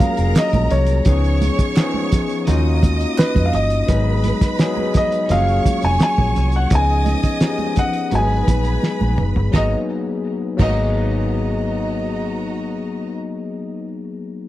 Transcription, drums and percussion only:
0.00 kick, closed hi-hat, high conga
0.17 closed hi-hat
0.35 snare, clap, closed hi-hat
0.53 kick, closed hi-hat, high conga
0.70 closed hi-hat, muted conga, low conga
0.86 closed hi-hat
1.05 kick, closed hi-hat, muted conga
1.24 closed hi-hat
1.42 closed hi-hat, muted conga, high conga
1.59 kick, closed hi-hat
1.76 snare, clap, closed hi-hat, muted conga
1.94 high conga
2.12 kick, closed hi-hat, muted conga, low conga
2.29 closed hi-hat
2.47 snare, closed hi-hat, muted conga, high conga, low conga
2.83 kick, closed hi-hat, muted conga, high conga
3.00 closed hi-hat
3.18 snare, clap, closed hi-hat, muted conga
3.35 kick, closed hi-hat, high conga
3.53 closed hi-hat, muted conga, low conga
3.70 closed hi-hat
3.88 kick, closed hi-hat, muted conga
4.24 closed hi-hat, muted conga, high conga
4.41 kick, snare, closed hi-hat
4.59 snare, closed hi-hat, muted conga
4.78 high conga
4.94 kick, closed hi-hat, muted conga, low conga
5.12 closed hi-hat
5.29 snare, closed hi-hat, high conga, low conga
5.48 closed hi-hat
5.66 kick, closed hi-hat, high conga
5.82 closed hi-hat
6.00 snare, closed hi-hat, muted conga
6.18 kick, high conga
6.35 closed hi-hat, low conga
6.52 closed hi-hat
6.70 kick, closed hi-hat, muted conga
7.06 closed hi-hat, muted conga, high conga
7.23 kick, closed hi-hat
7.40 snare, closed hi-hat
7.58 closed hi-hat, high conga
7.76 kick, closed hi-hat, muted conga, low conga
7.93 closed hi-hat
8.11 closed hi-hat, muted conga, high conga, low conga
8.48 kick, closed hi-hat, muted conga, high conga
8.64 closed hi-hat
8.83 snare, muted conga
9.01 high conga
9.18 mid tom, muted conga, low conga
9.36 floor tom
9.54 kick, snare, high conga
10.59 kick, crash, high conga

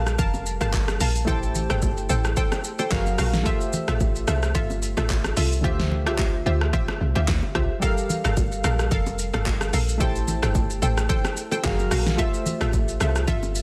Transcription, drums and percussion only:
0.07 cross-stick, shaker
0.19 kick, low conga, shaker
0.34 low bongo, shaker
0.46 shaker
0.61 cross-stick, high bongo, low bongo, shaker
0.73 kick, clap, high bongo, shaker
0.88 cross-stick, low bongo, shaker
1.00 open hi-hat, shaker
1.16 shaker
1.28 kick, low conga, shaker
1.43 shaker
1.55 low conga, shaker
1.70 cross-stick, shaker
1.82 kick, high bongo, shaker
1.97 shaker
2.10 shaker
2.25 cross-stick, shaker
2.37 kick, low conga, shaker
2.52 cross-stick, low bongo, shaker
2.64 shaker
2.79 high bongo, low bongo, shaker
2.91 kick, snare, clap, high bongo, shaker
3.06 low bongo, shaker
3.18 cross-stick, open hi-hat, shaker
3.34 snare, shaker
3.46 kick, low conga, shaker
3.61 shaker
3.73 low conga, shaker
3.88 cross-stick, shaker
4.00 kick, high bongo, shaker
4.16 shaker
4.28 cross-stick, shaker
4.43 cross-stick, shaker
4.55 kick, low conga, shaker
4.70 low bongo, shaker
4.83 shaker
4.97 cross-stick, high bongo, low bongo, shaker
5.10 kick, clap, high bongo, shaker
5.24 cross-stick, low bongo, shaker
5.37 open hi-hat, shaker
5.52 shaker
5.64 kick, low conga
5.80 snare
5.92 low conga
6.07 cross-stick
6.18 kick, clap, high bongo
6.61 cross-stick
6.73 kick, low conga
6.88 cross-stick, low bongo
7.16 high bongo, low bongo
7.28 kick, snare, clap, high bongo
7.43 low bongo
7.55 kick, cross-stick
7.82 kick, low conga, shaker
7.98 shaker
8.10 low conga, shaker
8.25 cross-stick, shaker
8.37 kick, high bongo, shaker
8.52 shaker
8.64 cross-stick, shaker
8.79 cross-stick, shaker
8.91 kick, low conga, shaker
9.06 low bongo, shaker
9.19 shaker
9.34 cross-stick, high bongo, low bongo, shaker
9.46 kick, clap, high bongo, shaker
9.61 cross-stick, low bongo, shaker
9.73 open hi-hat, shaker
9.89 shaker
10.01 kick, low conga, shaker
10.16 shaker
10.28 low conga, shaker
10.43 cross-stick, shaker
10.55 kick, high bongo, shaker
10.70 shaker
10.83 shaker
10.98 cross-stick, shaker
11.10 kick, low conga, shaker
11.25 cross-stick, low bongo, shaker
11.37 shaker
11.52 high bongo, low bongo, shaker
11.64 kick, snare, clap, high bongo, shaker
11.79 low bongo, shaker
11.91 cross-stick, open hi-hat, shaker
12.06 snare, shaker
12.19 kick, low conga, shaker
12.34 shaker
12.46 low conga, shaker
12.61 cross-stick, shaker
12.73 kick, high bongo, shaker
12.88 shaker
13.01 cross-stick, shaker
13.16 cross-stick, shaker
13.28 kick, low conga, shaker
13.43 low bongo, shaker
13.55 shaker

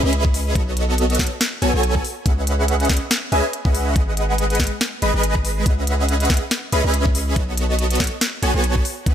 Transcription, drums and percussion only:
0.13 closed hi-hat
0.25 kick
0.34 open hi-hat
0.55 kick, closed hi-hat
0.77 closed hi-hat
0.98 closed hi-hat
1.10 closed hi-hat
1.15 closed hi-hat
1.19 kick, snare, closed hi-hat
1.23 closed hi-hat
1.27 closed hi-hat
1.41 snare, closed hi-hat
1.62 closed hi-hat
1.83 closed hi-hat
1.95 kick
2.05 open hi-hat
2.26 kick, closed hi-hat
2.47 closed hi-hat
2.68 closed hi-hat
2.80 closed hi-hat
2.85 closed hi-hat
2.90 kick, snare, closed hi-hat
2.93 closed hi-hat
2.97 closed hi-hat
3.11 snare, closed hi-hat
3.32 closed hi-hat
3.53 closed hi-hat
3.65 kick
3.75 open hi-hat
3.96 kick, closed hi-hat
4.17 closed hi-hat
4.38 closed hi-hat
4.50 closed hi-hat
4.55 closed hi-hat
4.60 kick, snare, closed hi-hat
4.64 closed hi-hat
4.67 closed hi-hat
4.81 snare, closed hi-hat
5.02 closed hi-hat
5.23 closed hi-hat
5.35 kick
5.45 open hi-hat
5.66 kick, closed hi-hat
5.87 closed hi-hat
6.09 closed hi-hat
6.20 closed hi-hat
6.25 closed hi-hat
6.30 kick, snare, closed hi-hat
6.34 closed hi-hat
6.37 closed hi-hat
6.51 snare, closed hi-hat
6.72 closed hi-hat
6.94 closed hi-hat
7.06 kick
7.15 open hi-hat
7.36 kick, closed hi-hat
7.57 closed hi-hat
7.79 closed hi-hat
7.91 closed hi-hat
7.95 closed hi-hat
8.00 kick, snare, closed hi-hat
8.04 closed hi-hat
8.07 closed hi-hat
8.21 snare, closed hi-hat
8.43 closed hi-hat
8.64 closed hi-hat
8.76 kick
8.85 open hi-hat
9.06 kick, closed hi-hat

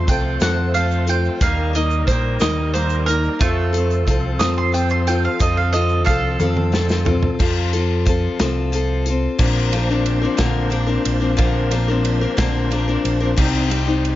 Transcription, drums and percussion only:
0.08 kick, closed hi-hat
0.40 snare, closed hi-hat, shaker
0.75 closed hi-hat
0.91 shaker
1.07 closed hi-hat
1.25 shaker
1.41 kick, closed hi-hat, shaker
1.75 closed hi-hat
1.91 shaker
2.08 kick, closed hi-hat
2.39 snare, closed hi-hat, shaker
2.75 closed hi-hat
2.90 shaker
3.08 closed hi-hat
3.24 shaker
3.41 kick, closed hi-hat, shaker
3.74 closed hi-hat, shaker
3.91 shaker
4.07 kick, closed hi-hat
4.40 snare, closed hi-hat, shaker
4.74 closed hi-hat
4.89 shaker
5.07 closed hi-hat
5.24 shaker
5.39 kick, closed hi-hat, shaker
5.74 closed hi-hat
5.89 shaker
6.07 kick, closed hi-hat
6.40 high tom, shaker
6.57 high tom
6.73 snare, shaker
6.89 snare, shaker
7.05 floor tom, shaker
7.23 floor tom
7.40 kick, crash
7.73 closed hi-hat
8.06 kick, closed hi-hat
8.40 snare, closed hi-hat
8.73 closed hi-hat
9.06 closed hi-hat
9.39 kick, crash
9.73 ride
10.06 ride
10.38 kick, snare, ride
10.72 ride
11.05 ride
11.38 kick, ride
11.71 ride
12.05 ride
12.38 kick, snare, ride
12.71 ride
13.05 ride
13.37 kick, crash
13.71 ride
14.05 ride

